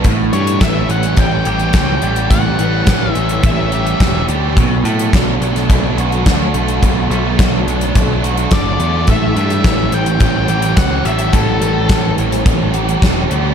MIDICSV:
0, 0, Header, 1, 6, 480
1, 0, Start_track
1, 0, Tempo, 563910
1, 41, Time_signature, 4, 2, 24, 8
1, 11527, End_track
2, 0, Start_track
2, 0, Title_t, "Lead electric guitar"
2, 0, Program_c, 0, 29
2, 283, Note_on_c, 0, 73, 91
2, 519, Note_off_c, 0, 73, 0
2, 523, Note_on_c, 0, 76, 91
2, 770, Note_off_c, 0, 76, 0
2, 772, Note_on_c, 0, 78, 102
2, 1011, Note_off_c, 0, 78, 0
2, 1015, Note_on_c, 0, 79, 98
2, 1959, Note_off_c, 0, 79, 0
2, 1962, Note_on_c, 0, 78, 86
2, 2652, Note_off_c, 0, 78, 0
2, 2652, Note_on_c, 0, 76, 86
2, 2924, Note_off_c, 0, 76, 0
2, 2924, Note_on_c, 0, 76, 84
2, 3613, Note_off_c, 0, 76, 0
2, 7260, Note_on_c, 0, 74, 98
2, 7742, Note_off_c, 0, 74, 0
2, 7745, Note_on_c, 0, 76, 86
2, 8462, Note_on_c, 0, 79, 112
2, 8480, Note_off_c, 0, 76, 0
2, 9143, Note_off_c, 0, 79, 0
2, 9164, Note_on_c, 0, 78, 103
2, 9407, Note_on_c, 0, 76, 82
2, 9415, Note_off_c, 0, 78, 0
2, 9641, Note_on_c, 0, 69, 69
2, 9656, Note_off_c, 0, 76, 0
2, 10330, Note_off_c, 0, 69, 0
2, 11527, End_track
3, 0, Start_track
3, 0, Title_t, "Overdriven electric guitar"
3, 0, Program_c, 1, 29
3, 39, Note_on_c, 1, 45, 67
3, 286, Note_on_c, 1, 55, 66
3, 523, Note_on_c, 1, 61, 68
3, 752, Note_on_c, 1, 52, 60
3, 990, Note_off_c, 1, 61, 0
3, 1000, Note_on_c, 1, 61, 79
3, 1235, Note_on_c, 1, 67, 76
3, 1242, Note_off_c, 1, 45, 0
3, 1465, Note_off_c, 1, 61, 0
3, 1475, Note_on_c, 1, 61, 66
3, 1486, Note_off_c, 1, 55, 0
3, 1723, Note_on_c, 1, 55, 79
3, 1959, Note_on_c, 1, 45, 66
3, 1960, Note_off_c, 1, 52, 0
3, 2192, Note_off_c, 1, 55, 0
3, 2202, Note_on_c, 1, 55, 68
3, 2433, Note_off_c, 1, 61, 0
3, 2441, Note_off_c, 1, 67, 0
3, 2443, Note_on_c, 1, 61, 69
3, 2689, Note_on_c, 1, 52, 70
3, 2919, Note_off_c, 1, 61, 0
3, 2929, Note_on_c, 1, 61, 77
3, 3164, Note_off_c, 1, 45, 0
3, 3168, Note_on_c, 1, 67, 71
3, 3392, Note_off_c, 1, 61, 0
3, 3403, Note_on_c, 1, 61, 63
3, 3406, Note_off_c, 1, 55, 0
3, 3647, Note_on_c, 1, 55, 77
3, 3884, Note_on_c, 1, 47, 72
3, 3886, Note_off_c, 1, 61, 0
3, 3888, Note_off_c, 1, 55, 0
3, 3889, Note_off_c, 1, 67, 0
3, 3890, Note_off_c, 1, 52, 0
3, 4128, Note_on_c, 1, 57, 65
3, 4369, Note_on_c, 1, 62, 72
3, 4610, Note_on_c, 1, 54, 67
3, 4841, Note_off_c, 1, 62, 0
3, 4851, Note_on_c, 1, 62, 72
3, 5088, Note_off_c, 1, 47, 0
3, 5089, Note_on_c, 1, 66, 76
3, 5327, Note_off_c, 1, 62, 0
3, 5338, Note_on_c, 1, 62, 65
3, 5567, Note_off_c, 1, 57, 0
3, 5570, Note_on_c, 1, 57, 75
3, 5802, Note_on_c, 1, 47, 67
3, 5811, Note_off_c, 1, 54, 0
3, 6037, Note_off_c, 1, 57, 0
3, 6041, Note_on_c, 1, 57, 75
3, 6277, Note_off_c, 1, 62, 0
3, 6287, Note_on_c, 1, 62, 64
3, 6291, Note_off_c, 1, 66, 0
3, 6530, Note_on_c, 1, 54, 61
3, 6763, Note_off_c, 1, 62, 0
3, 6774, Note_on_c, 1, 62, 76
3, 7008, Note_off_c, 1, 47, 0
3, 7010, Note_on_c, 1, 66, 79
3, 7238, Note_off_c, 1, 62, 0
3, 7249, Note_on_c, 1, 62, 67
3, 7487, Note_off_c, 1, 57, 0
3, 7491, Note_on_c, 1, 57, 81
3, 7727, Note_on_c, 1, 45, 65
3, 7731, Note_off_c, 1, 54, 0
3, 7731, Note_off_c, 1, 62, 0
3, 7732, Note_off_c, 1, 66, 0
3, 7966, Note_off_c, 1, 57, 0
3, 7969, Note_on_c, 1, 55, 75
3, 8212, Note_on_c, 1, 61, 72
3, 8453, Note_on_c, 1, 52, 64
3, 8682, Note_off_c, 1, 61, 0
3, 8686, Note_on_c, 1, 61, 78
3, 8926, Note_on_c, 1, 67, 77
3, 8952, Note_off_c, 1, 45, 0
3, 9153, Note_off_c, 1, 61, 0
3, 9163, Note_on_c, 1, 61, 66
3, 9189, Note_off_c, 1, 55, 0
3, 9405, Note_on_c, 1, 55, 79
3, 9638, Note_on_c, 1, 45, 72
3, 9873, Note_off_c, 1, 55, 0
3, 9883, Note_on_c, 1, 55, 71
3, 10117, Note_off_c, 1, 61, 0
3, 10127, Note_off_c, 1, 67, 0
3, 10127, Note_on_c, 1, 61, 68
3, 10359, Note_off_c, 1, 52, 0
3, 10363, Note_on_c, 1, 52, 58
3, 10594, Note_off_c, 1, 61, 0
3, 10605, Note_on_c, 1, 61, 77
3, 10840, Note_off_c, 1, 45, 0
3, 10849, Note_on_c, 1, 67, 73
3, 11070, Note_off_c, 1, 61, 0
3, 11080, Note_on_c, 1, 61, 61
3, 11081, Note_off_c, 1, 55, 0
3, 11320, Note_on_c, 1, 55, 74
3, 11527, Note_off_c, 1, 52, 0
3, 11527, Note_off_c, 1, 55, 0
3, 11527, Note_off_c, 1, 61, 0
3, 11527, Note_off_c, 1, 67, 0
3, 11527, End_track
4, 0, Start_track
4, 0, Title_t, "Overdriven electric guitar"
4, 0, Program_c, 2, 29
4, 52, Note_on_c, 2, 45, 67
4, 289, Note_on_c, 2, 52, 61
4, 512, Note_off_c, 2, 52, 0
4, 522, Note_on_c, 2, 52, 69
4, 761, Note_on_c, 2, 61, 78
4, 999, Note_on_c, 2, 55, 75
4, 1239, Note_on_c, 2, 67, 64
4, 1249, Note_off_c, 2, 45, 0
4, 1466, Note_off_c, 2, 61, 0
4, 1476, Note_on_c, 2, 61, 69
4, 1709, Note_off_c, 2, 67, 0
4, 1720, Note_on_c, 2, 67, 73
4, 1724, Note_off_c, 2, 52, 0
4, 1957, Note_on_c, 2, 45, 74
4, 2194, Note_on_c, 2, 52, 67
4, 2203, Note_off_c, 2, 55, 0
4, 2436, Note_off_c, 2, 52, 0
4, 2447, Note_on_c, 2, 52, 76
4, 2674, Note_off_c, 2, 61, 0
4, 2684, Note_on_c, 2, 61, 77
4, 2920, Note_on_c, 2, 55, 71
4, 2924, Note_off_c, 2, 67, 0
4, 3163, Note_off_c, 2, 45, 0
4, 3167, Note_on_c, 2, 67, 69
4, 3397, Note_off_c, 2, 61, 0
4, 3408, Note_on_c, 2, 61, 75
4, 3634, Note_off_c, 2, 67, 0
4, 3644, Note_on_c, 2, 67, 72
4, 3648, Note_off_c, 2, 52, 0
4, 3885, Note_off_c, 2, 55, 0
4, 3885, Note_on_c, 2, 47, 66
4, 3886, Note_off_c, 2, 67, 0
4, 3888, Note_off_c, 2, 61, 0
4, 4125, Note_on_c, 2, 54, 67
4, 4362, Note_off_c, 2, 54, 0
4, 4372, Note_on_c, 2, 54, 68
4, 4608, Note_on_c, 2, 62, 77
4, 4851, Note_on_c, 2, 57, 67
4, 5084, Note_on_c, 2, 66, 72
4, 5089, Note_off_c, 2, 47, 0
4, 5315, Note_off_c, 2, 62, 0
4, 5326, Note_on_c, 2, 62, 66
4, 5546, Note_off_c, 2, 66, 0
4, 5556, Note_on_c, 2, 66, 66
4, 5572, Note_off_c, 2, 54, 0
4, 5803, Note_on_c, 2, 47, 70
4, 6046, Note_on_c, 2, 54, 67
4, 6281, Note_off_c, 2, 54, 0
4, 6291, Note_on_c, 2, 54, 75
4, 6515, Note_off_c, 2, 62, 0
4, 6526, Note_on_c, 2, 62, 76
4, 6765, Note_off_c, 2, 66, 0
4, 6767, Note_off_c, 2, 57, 0
4, 6771, Note_on_c, 2, 57, 77
4, 7008, Note_off_c, 2, 47, 0
4, 7008, Note_on_c, 2, 66, 66
4, 7235, Note_off_c, 2, 62, 0
4, 7245, Note_on_c, 2, 62, 69
4, 7477, Note_off_c, 2, 66, 0
4, 7487, Note_on_c, 2, 66, 67
4, 7492, Note_off_c, 2, 54, 0
4, 7729, Note_off_c, 2, 62, 0
4, 7730, Note_off_c, 2, 66, 0
4, 7731, Note_on_c, 2, 45, 68
4, 7966, Note_on_c, 2, 52, 71
4, 8204, Note_off_c, 2, 52, 0
4, 8207, Note_on_c, 2, 52, 70
4, 8449, Note_on_c, 2, 61, 76
4, 8691, Note_off_c, 2, 57, 0
4, 8694, Note_on_c, 2, 55, 74
4, 8926, Note_on_c, 2, 67, 75
4, 8951, Note_off_c, 2, 45, 0
4, 9164, Note_off_c, 2, 61, 0
4, 9167, Note_on_c, 2, 61, 66
4, 9392, Note_off_c, 2, 67, 0
4, 9403, Note_on_c, 2, 67, 73
4, 9643, Note_on_c, 2, 45, 67
4, 9881, Note_off_c, 2, 52, 0
4, 9884, Note_on_c, 2, 52, 66
4, 9891, Note_off_c, 2, 55, 0
4, 10114, Note_off_c, 2, 52, 0
4, 10125, Note_on_c, 2, 52, 71
4, 10353, Note_off_c, 2, 61, 0
4, 10363, Note_on_c, 2, 61, 73
4, 10603, Note_off_c, 2, 67, 0
4, 10605, Note_on_c, 2, 55, 75
4, 10842, Note_off_c, 2, 45, 0
4, 10843, Note_on_c, 2, 67, 74
4, 11071, Note_off_c, 2, 61, 0
4, 11081, Note_on_c, 2, 61, 68
4, 11310, Note_off_c, 2, 67, 0
4, 11320, Note_on_c, 2, 67, 67
4, 11321, Note_off_c, 2, 52, 0
4, 11527, Note_off_c, 2, 55, 0
4, 11527, Note_off_c, 2, 61, 0
4, 11527, Note_off_c, 2, 67, 0
4, 11527, End_track
5, 0, Start_track
5, 0, Title_t, "Picked electric bass"
5, 0, Program_c, 3, 34
5, 40, Note_on_c, 3, 33, 79
5, 252, Note_off_c, 3, 33, 0
5, 284, Note_on_c, 3, 43, 89
5, 495, Note_off_c, 3, 43, 0
5, 521, Note_on_c, 3, 33, 95
5, 733, Note_off_c, 3, 33, 0
5, 759, Note_on_c, 3, 33, 90
5, 972, Note_off_c, 3, 33, 0
5, 998, Note_on_c, 3, 33, 81
5, 1212, Note_off_c, 3, 33, 0
5, 1241, Note_on_c, 3, 33, 92
5, 1454, Note_off_c, 3, 33, 0
5, 1480, Note_on_c, 3, 37, 84
5, 1693, Note_off_c, 3, 37, 0
5, 1723, Note_on_c, 3, 33, 96
5, 1936, Note_off_c, 3, 33, 0
5, 1964, Note_on_c, 3, 33, 77
5, 2176, Note_off_c, 3, 33, 0
5, 2203, Note_on_c, 3, 33, 86
5, 2416, Note_off_c, 3, 33, 0
5, 2444, Note_on_c, 3, 33, 92
5, 2657, Note_off_c, 3, 33, 0
5, 2687, Note_on_c, 3, 33, 77
5, 2899, Note_off_c, 3, 33, 0
5, 2923, Note_on_c, 3, 33, 90
5, 3348, Note_off_c, 3, 33, 0
5, 3408, Note_on_c, 3, 28, 80
5, 3620, Note_off_c, 3, 28, 0
5, 3645, Note_on_c, 3, 38, 86
5, 3888, Note_on_c, 3, 35, 89
5, 3901, Note_off_c, 3, 38, 0
5, 4100, Note_off_c, 3, 35, 0
5, 4118, Note_on_c, 3, 45, 89
5, 4334, Note_off_c, 3, 45, 0
5, 4367, Note_on_c, 3, 35, 92
5, 4579, Note_off_c, 3, 35, 0
5, 4606, Note_on_c, 3, 35, 81
5, 4819, Note_off_c, 3, 35, 0
5, 4847, Note_on_c, 3, 35, 85
5, 5060, Note_off_c, 3, 35, 0
5, 5081, Note_on_c, 3, 35, 91
5, 5297, Note_off_c, 3, 35, 0
5, 5332, Note_on_c, 3, 38, 83
5, 5543, Note_off_c, 3, 38, 0
5, 5568, Note_on_c, 3, 35, 88
5, 5781, Note_off_c, 3, 35, 0
5, 5812, Note_on_c, 3, 35, 86
5, 6024, Note_off_c, 3, 35, 0
5, 6042, Note_on_c, 3, 35, 89
5, 6258, Note_off_c, 3, 35, 0
5, 6292, Note_on_c, 3, 35, 93
5, 6504, Note_off_c, 3, 35, 0
5, 6524, Note_on_c, 3, 35, 83
5, 6739, Note_off_c, 3, 35, 0
5, 6773, Note_on_c, 3, 35, 84
5, 7196, Note_off_c, 3, 35, 0
5, 7251, Note_on_c, 3, 30, 89
5, 7463, Note_off_c, 3, 30, 0
5, 7485, Note_on_c, 3, 40, 90
5, 7700, Note_off_c, 3, 40, 0
5, 7728, Note_on_c, 3, 33, 84
5, 7942, Note_off_c, 3, 33, 0
5, 7969, Note_on_c, 3, 43, 84
5, 8182, Note_off_c, 3, 43, 0
5, 8209, Note_on_c, 3, 33, 88
5, 8422, Note_off_c, 3, 33, 0
5, 8446, Note_on_c, 3, 33, 86
5, 8660, Note_off_c, 3, 33, 0
5, 8687, Note_on_c, 3, 33, 97
5, 8900, Note_off_c, 3, 33, 0
5, 8924, Note_on_c, 3, 33, 101
5, 9139, Note_off_c, 3, 33, 0
5, 9168, Note_on_c, 3, 37, 83
5, 9380, Note_off_c, 3, 37, 0
5, 9407, Note_on_c, 3, 33, 91
5, 9620, Note_off_c, 3, 33, 0
5, 9649, Note_on_c, 3, 33, 86
5, 9861, Note_off_c, 3, 33, 0
5, 9886, Note_on_c, 3, 33, 82
5, 10099, Note_off_c, 3, 33, 0
5, 10124, Note_on_c, 3, 33, 82
5, 10337, Note_off_c, 3, 33, 0
5, 10369, Note_on_c, 3, 33, 86
5, 10580, Note_off_c, 3, 33, 0
5, 10603, Note_on_c, 3, 33, 88
5, 11026, Note_off_c, 3, 33, 0
5, 11083, Note_on_c, 3, 28, 78
5, 11294, Note_off_c, 3, 28, 0
5, 11327, Note_on_c, 3, 38, 91
5, 11527, Note_off_c, 3, 38, 0
5, 11527, End_track
6, 0, Start_track
6, 0, Title_t, "Drums"
6, 35, Note_on_c, 9, 42, 64
6, 39, Note_on_c, 9, 36, 98
6, 120, Note_off_c, 9, 42, 0
6, 124, Note_off_c, 9, 36, 0
6, 280, Note_on_c, 9, 42, 75
6, 366, Note_off_c, 9, 42, 0
6, 401, Note_on_c, 9, 42, 69
6, 486, Note_off_c, 9, 42, 0
6, 518, Note_on_c, 9, 42, 72
6, 520, Note_on_c, 9, 36, 107
6, 525, Note_on_c, 9, 38, 114
6, 603, Note_off_c, 9, 42, 0
6, 605, Note_off_c, 9, 36, 0
6, 610, Note_off_c, 9, 38, 0
6, 762, Note_on_c, 9, 42, 66
6, 847, Note_off_c, 9, 42, 0
6, 876, Note_on_c, 9, 42, 73
6, 961, Note_off_c, 9, 42, 0
6, 993, Note_on_c, 9, 42, 70
6, 999, Note_on_c, 9, 36, 102
6, 1078, Note_off_c, 9, 42, 0
6, 1084, Note_off_c, 9, 36, 0
6, 1237, Note_on_c, 9, 42, 72
6, 1322, Note_off_c, 9, 42, 0
6, 1357, Note_on_c, 9, 42, 53
6, 1442, Note_off_c, 9, 42, 0
6, 1473, Note_on_c, 9, 42, 66
6, 1479, Note_on_c, 9, 36, 116
6, 1480, Note_on_c, 9, 38, 110
6, 1558, Note_off_c, 9, 42, 0
6, 1564, Note_off_c, 9, 36, 0
6, 1565, Note_off_c, 9, 38, 0
6, 1717, Note_on_c, 9, 42, 63
6, 1802, Note_off_c, 9, 42, 0
6, 1839, Note_on_c, 9, 42, 62
6, 1924, Note_off_c, 9, 42, 0
6, 1962, Note_on_c, 9, 36, 100
6, 1963, Note_on_c, 9, 42, 61
6, 2047, Note_off_c, 9, 36, 0
6, 2048, Note_off_c, 9, 42, 0
6, 2204, Note_on_c, 9, 42, 64
6, 2289, Note_off_c, 9, 42, 0
6, 2439, Note_on_c, 9, 42, 69
6, 2443, Note_on_c, 9, 36, 107
6, 2446, Note_on_c, 9, 38, 107
6, 2524, Note_off_c, 9, 42, 0
6, 2529, Note_off_c, 9, 36, 0
6, 2531, Note_off_c, 9, 38, 0
6, 2684, Note_on_c, 9, 42, 58
6, 2769, Note_off_c, 9, 42, 0
6, 2803, Note_on_c, 9, 42, 70
6, 2888, Note_off_c, 9, 42, 0
6, 2922, Note_on_c, 9, 42, 67
6, 2924, Note_on_c, 9, 36, 114
6, 3007, Note_off_c, 9, 42, 0
6, 3010, Note_off_c, 9, 36, 0
6, 3166, Note_on_c, 9, 42, 70
6, 3251, Note_off_c, 9, 42, 0
6, 3290, Note_on_c, 9, 42, 57
6, 3375, Note_off_c, 9, 42, 0
6, 3408, Note_on_c, 9, 36, 108
6, 3409, Note_on_c, 9, 42, 72
6, 3416, Note_on_c, 9, 38, 114
6, 3493, Note_off_c, 9, 36, 0
6, 3495, Note_off_c, 9, 42, 0
6, 3501, Note_off_c, 9, 38, 0
6, 3647, Note_on_c, 9, 42, 67
6, 3732, Note_off_c, 9, 42, 0
6, 3888, Note_on_c, 9, 36, 104
6, 3890, Note_on_c, 9, 42, 63
6, 3973, Note_off_c, 9, 36, 0
6, 3975, Note_off_c, 9, 42, 0
6, 4130, Note_on_c, 9, 42, 74
6, 4215, Note_off_c, 9, 42, 0
6, 4251, Note_on_c, 9, 42, 69
6, 4336, Note_off_c, 9, 42, 0
6, 4369, Note_on_c, 9, 36, 111
6, 4372, Note_on_c, 9, 42, 74
6, 4379, Note_on_c, 9, 38, 122
6, 4454, Note_off_c, 9, 36, 0
6, 4457, Note_off_c, 9, 42, 0
6, 4464, Note_off_c, 9, 38, 0
6, 4612, Note_on_c, 9, 42, 70
6, 4697, Note_off_c, 9, 42, 0
6, 4733, Note_on_c, 9, 42, 75
6, 4740, Note_on_c, 9, 38, 36
6, 4818, Note_off_c, 9, 42, 0
6, 4825, Note_off_c, 9, 38, 0
6, 4849, Note_on_c, 9, 36, 112
6, 4850, Note_on_c, 9, 42, 75
6, 4934, Note_off_c, 9, 36, 0
6, 4935, Note_off_c, 9, 42, 0
6, 5093, Note_on_c, 9, 42, 73
6, 5178, Note_off_c, 9, 42, 0
6, 5212, Note_on_c, 9, 42, 51
6, 5297, Note_off_c, 9, 42, 0
6, 5329, Note_on_c, 9, 42, 73
6, 5330, Note_on_c, 9, 36, 110
6, 5336, Note_on_c, 9, 38, 113
6, 5414, Note_off_c, 9, 42, 0
6, 5415, Note_off_c, 9, 36, 0
6, 5421, Note_off_c, 9, 38, 0
6, 5568, Note_on_c, 9, 42, 65
6, 5654, Note_off_c, 9, 42, 0
6, 5690, Note_on_c, 9, 42, 63
6, 5775, Note_off_c, 9, 42, 0
6, 5810, Note_on_c, 9, 36, 89
6, 5810, Note_on_c, 9, 42, 63
6, 5895, Note_off_c, 9, 42, 0
6, 5896, Note_off_c, 9, 36, 0
6, 6055, Note_on_c, 9, 42, 71
6, 6140, Note_off_c, 9, 42, 0
6, 6291, Note_on_c, 9, 36, 116
6, 6291, Note_on_c, 9, 42, 68
6, 6298, Note_on_c, 9, 38, 102
6, 6376, Note_off_c, 9, 36, 0
6, 6376, Note_off_c, 9, 42, 0
6, 6383, Note_off_c, 9, 38, 0
6, 6536, Note_on_c, 9, 42, 54
6, 6621, Note_off_c, 9, 42, 0
6, 6650, Note_on_c, 9, 42, 69
6, 6736, Note_off_c, 9, 42, 0
6, 6771, Note_on_c, 9, 36, 116
6, 6772, Note_on_c, 9, 42, 66
6, 6856, Note_off_c, 9, 36, 0
6, 6857, Note_off_c, 9, 42, 0
6, 7015, Note_on_c, 9, 42, 71
6, 7100, Note_off_c, 9, 42, 0
6, 7129, Note_on_c, 9, 42, 60
6, 7214, Note_off_c, 9, 42, 0
6, 7242, Note_on_c, 9, 42, 76
6, 7248, Note_on_c, 9, 36, 122
6, 7249, Note_on_c, 9, 38, 118
6, 7327, Note_off_c, 9, 42, 0
6, 7333, Note_off_c, 9, 36, 0
6, 7334, Note_off_c, 9, 38, 0
6, 7488, Note_on_c, 9, 42, 68
6, 7573, Note_off_c, 9, 42, 0
6, 7721, Note_on_c, 9, 42, 60
6, 7728, Note_on_c, 9, 36, 92
6, 7806, Note_off_c, 9, 42, 0
6, 7813, Note_off_c, 9, 36, 0
6, 7972, Note_on_c, 9, 42, 72
6, 8057, Note_off_c, 9, 42, 0
6, 8089, Note_on_c, 9, 42, 74
6, 8174, Note_off_c, 9, 42, 0
6, 8208, Note_on_c, 9, 42, 71
6, 8209, Note_on_c, 9, 36, 118
6, 8215, Note_on_c, 9, 38, 101
6, 8293, Note_off_c, 9, 42, 0
6, 8295, Note_off_c, 9, 36, 0
6, 8300, Note_off_c, 9, 38, 0
6, 8446, Note_on_c, 9, 42, 69
6, 8531, Note_off_c, 9, 42, 0
6, 8565, Note_on_c, 9, 42, 81
6, 8650, Note_off_c, 9, 42, 0
6, 8684, Note_on_c, 9, 42, 71
6, 8687, Note_on_c, 9, 36, 107
6, 8769, Note_off_c, 9, 42, 0
6, 8772, Note_off_c, 9, 36, 0
6, 8922, Note_on_c, 9, 42, 77
6, 9008, Note_off_c, 9, 42, 0
6, 9043, Note_on_c, 9, 42, 63
6, 9128, Note_off_c, 9, 42, 0
6, 9165, Note_on_c, 9, 42, 74
6, 9168, Note_on_c, 9, 36, 114
6, 9172, Note_on_c, 9, 38, 107
6, 9250, Note_off_c, 9, 42, 0
6, 9253, Note_off_c, 9, 36, 0
6, 9257, Note_off_c, 9, 38, 0
6, 9409, Note_on_c, 9, 42, 70
6, 9494, Note_off_c, 9, 42, 0
6, 9522, Note_on_c, 9, 42, 66
6, 9607, Note_off_c, 9, 42, 0
6, 9643, Note_on_c, 9, 42, 64
6, 9647, Note_on_c, 9, 36, 97
6, 9729, Note_off_c, 9, 42, 0
6, 9732, Note_off_c, 9, 36, 0
6, 9888, Note_on_c, 9, 42, 67
6, 9973, Note_off_c, 9, 42, 0
6, 10122, Note_on_c, 9, 42, 64
6, 10125, Note_on_c, 9, 36, 112
6, 10129, Note_on_c, 9, 38, 114
6, 10207, Note_off_c, 9, 42, 0
6, 10210, Note_off_c, 9, 36, 0
6, 10214, Note_off_c, 9, 38, 0
6, 10367, Note_on_c, 9, 42, 56
6, 10452, Note_off_c, 9, 42, 0
6, 10490, Note_on_c, 9, 42, 72
6, 10496, Note_on_c, 9, 38, 36
6, 10575, Note_off_c, 9, 42, 0
6, 10582, Note_off_c, 9, 38, 0
6, 10605, Note_on_c, 9, 36, 123
6, 10605, Note_on_c, 9, 42, 67
6, 10690, Note_off_c, 9, 36, 0
6, 10690, Note_off_c, 9, 42, 0
6, 10841, Note_on_c, 9, 42, 73
6, 10927, Note_off_c, 9, 42, 0
6, 10969, Note_on_c, 9, 42, 58
6, 11054, Note_off_c, 9, 42, 0
6, 11085, Note_on_c, 9, 36, 103
6, 11088, Note_on_c, 9, 42, 72
6, 11095, Note_on_c, 9, 38, 116
6, 11170, Note_off_c, 9, 36, 0
6, 11173, Note_off_c, 9, 42, 0
6, 11180, Note_off_c, 9, 38, 0
6, 11328, Note_on_c, 9, 42, 65
6, 11413, Note_off_c, 9, 42, 0
6, 11527, End_track
0, 0, End_of_file